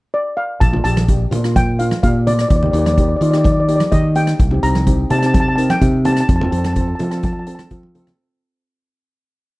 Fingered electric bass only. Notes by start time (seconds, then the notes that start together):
0.61 A#1
0.84 A#1
1.31 A#2
2.03 A#2
2.50 D#2
2.73 D#2
3.21 D#3
3.92 D#3
4.40 C2
4.63 C2
5.11 C3
5.81 C3
6.29 F2
6.52 F2
7.00 F3
7.71 F3